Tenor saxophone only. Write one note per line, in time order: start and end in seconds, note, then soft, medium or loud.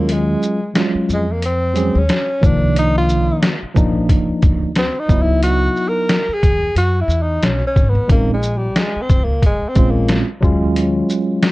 0.00 0.14 A#3 medium
0.12 0.77 G#3 medium
1.13 1.34 G#3 medium
1.32 1.44 A#3 medium
1.46 2.00 C4 medium
1.98 2.47 C#4 medium
2.46 2.78 D4 medium
2.78 2.95 D#4 loud
2.98 3.59 F4 loud
4.78 5.01 C4 medium
4.99 5.24 D#4 medium
5.22 5.43 E4 medium
5.43 5.90 F#4 loud
5.89 6.35 A#4 loud
6.34 6.77 G#4 medium
6.78 7.02 F#4 loud
7.01 7.24 E4 medium
7.22 7.46 D#4 medium
7.45 7.66 C#4 medium
7.67 7.90 C#4 medium
7.89 8.10 B3 medium
8.11 8.31 A#3 medium
8.34 8.59 G#3 medium
8.57 8.80 G3 medium
8.78 9.03 G#3 medium
9.02 9.26 C4 medium
9.24 9.44 A#3 medium
9.46 9.70 G#3 medium
9.69 9.92 C4 medium
9.91 10.22 A#3 medium